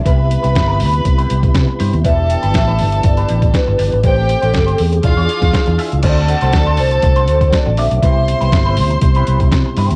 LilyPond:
<<
  \new Staff \with { instrumentName = "Violin section" } { \time 4/4 \key d \dorian \tempo 4 = 120 <b' b''>2.~ <b' b''>8 r8 | <a' a''>2.~ <a' a''>8 r8 | <g' g''>4. r8 <f' f''>4. r8 | <a' a''>2.~ <a' a''>8 r8 |
<c'' c'''>2.~ <c'' c'''>8 r8 | }
  \new Staff \with { instrumentName = "Vibraphone" } { \time 4/4 \key d \dorian e''4. r2 r8 | e''8 g''8 e''4 d''4 b'8 b'8 | c''8. a'8. gis'2 r8 | d''8 fis''8 d''8 c''4 c''8 d''8 e''8~ |
e''4. r2 r8 | }
  \new Staff \with { instrumentName = "Clean electric guitar" } { \time 4/4 \key d \dorian <e' g' b'>8 r16 <e' g' b'>16 r16 <e' g' b'>8 r8 <e' g' b'>16 <e' g' b'>16 r8. <e' g' c''>8 | <d' g' b'>8 r16 <d' g' b'>16 r16 <d' g' b'>8 r8 <d' g' b'>16 <d' g' b'>16 r8. <d' g' d''>8 | <d' g' c''>8 r16 <d' g' c''>16 r16 <d' g' c''>8 r8 <f' gis' d''>16 <f' gis' d''>16 r8. <f' gis' e''>8 | <d' fis' c''>8 r16 <d' fis' c''>16 r16 <d' fis' c''>8 r8 <d' fis' c''>16 <d' fis' c''>16 r8. <d' fis' d''>8 |
<e' g' b'>8 r16 <e' g' b'>16 r16 <e' g' b'>8 r8 <e' g' b'>16 <e' g' b'>16 r8. <e' g' c''>8 | }
  \new Staff \with { instrumentName = "Tonewheel organ" } { \time 4/4 \key d \dorian <c g b e'>1 | <e b d' g'>1 | <a c' g'>2 <e d' f' gis'>2 | <d a c' fis'>1 |
<b, c g e'>1 | }
  \new Staff \with { instrumentName = "Fingered electric bass" } { \clef bass \time 4/4 \key d \dorian c,8. c,16 g,,8 d,8 c,8 c,8 c16 r16 g,16 dis,16 | e,,8. g,,16 a,,8 g,,8 g,,8 a,,8 r16 g,,16 g,,16 gis,,16 | a,,8. a,,16 g,,8 e,8 e,,16 e,16 r16 e,16 r16 e,16 r16 cis,16 | d,8. c,16 d,8 c,8 c,8 d,8 r16 a,,16 bes,,16 b,,16 |
c,8. c,16 g,,8 d,8 c,8 c,8 c16 r16 g,16 dis,16 | }
  \new DrumStaff \with { instrumentName = "Drums" } \drummode { \time 4/4 <hh bd>8 hh16 hh16 <hh bd sn>8 hho16 hh16 <hh bd>16 hh16 hh16 <hh bd>16 <hh bd sn>8 hho16 hh16 | <hh bd>8 hh16 hh16 <hh bd sn>8 hho16 hh16 <hh bd>16 hh16 hh16 <hh bd>16 <hh bd sn>8 hho16 hh16 | <hh bd>8 hh16 hh16 <hh bd sn>16 hh16 hho16 hh16 <hh bd>8 hh16 <hh bd sn>16 <hh bd sn>16 hh16 hho16 hh16 | <cymc hh bd>8 hh16 hh16 <hh bd sn>8 hho16 hh16 <hh bd>16 hh16 hh16 <hh bd>16 <hh bd sn>8 hho16 hh16 |
<hh bd>8 hh16 hh16 <hh bd sn>8 hho16 hh16 <hh bd>16 hh16 hh16 <hh bd>16 <hh bd sn>8 hho16 hh16 | }
>>